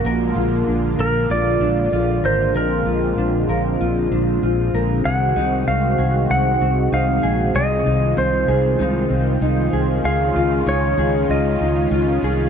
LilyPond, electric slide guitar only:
\new Staff \with { instrumentName = "Electric slide guitar" } { \time 4/4 \key aes \mixolydian \tempo 4 = 96 r4. bes'8 d''4. c''8 | bes'2 r2 | ges''4 f''4 ges''4 f''4 | ees''4 c''2~ c''8 r8 |
f''4 des''4 ees''2 | }